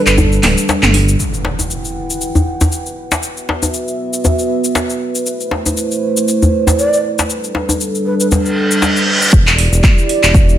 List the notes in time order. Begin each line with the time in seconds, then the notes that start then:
Already playing: G3 D4 A4 B4
0.06 G1 B4, clap, cabasa
0.18 djembe tone, djembe bass, cabasa
0.32 cabasa
0.43 D1, clap, mid tom, open hi-hat, djembe slap, djembe tone
0.58 cabasa
0.69 djembe slap, djembe tone, cabasa
0.83 G1, clap, mid tom, cabasa
0.94 open hi-hat, djembe tone
1.08 cabasa
1.19 E4 B4 F#5 G5, impact, cabasa
1.34 cabasa
1.45 djembe slap
1.59 djembe tone, cabasa
1.70 cabasa
1.85 cabasa
2.10 cabasa
2.21 cabasa
2.35 djembe bass, cabasa
2.61 djembe slap, djembe bass, cabasa
2.72 cabasa
2.86 cabasa
3.12 djembe slap, cabasa
3.23 B3 F#4 E5, cabasa
3.37 cabasa
3.49 djembe slap
3.62 djembe tone, cabasa
3.74 cabasa
3.88 cabasa
4.13 cabasa
4.24 djembe tone, djembe bass, cabasa
4.39 cabasa
4.64 cabasa
4.75 djembe slap, cabasa
4.90 cabasa
5.15 cabasa
5.26 A3 E4 C5, cabasa
5.40 cabasa
5.51 djembe slap
5.66 djembe tone, cabasa
5.77 cabasa
5.91 cabasa
6.17 cabasa
6.28 cabasa
6.42 djembe bass, cabasa
6.67 djembe slap, djembe bass, cabasa
6.79 D5, cabasa
6.93 cabasa
7.19 djembe slap, cabasa
7.29 G3 D4 A4, cabasa
7.44 cabasa
7.55 djembe slap
7.69 djembe tone, cabasa
7.81 cabasa
7.95 cabasa
8.06 B4
8.20 B4, cabasa
8.31 reverse cymbal, djembe tone, djembe bass, cabasa
8.46 cabasa
8.71 cabasa
8.82 djembe slap, cabasa
8.97 cabasa
9.22 cabasa
9.33 E1 E4 G4 D5, kick, cabasa
9.47 clap, cabasa
9.58 open hi-hat
9.72 E1, cabasa
9.84 kick, clap, mid tom, cabasa
9.98 cabasa
10.09 open hi-hat
10.23 E1, clap, cabasa
10.34 kick, cabasa
10.49 cabasa